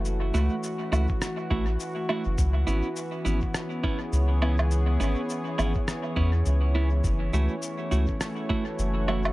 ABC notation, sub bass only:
X:1
M:4/4
L:1/16
Q:"Swing 16ths" 1/4=103
K:C#m
V:1 name="Sub bass" clef=bass
F,,,2 C,, z3 C,, z3 A,,,2 z3 F,,, | C,,2 G,,, z3 G,,, z4 z C,,4- | C,,2 G,,, z3 G,,, z3 E,,2 C,,4 | F,,,2 C,, z3 C,, z4 z F,,,4 |]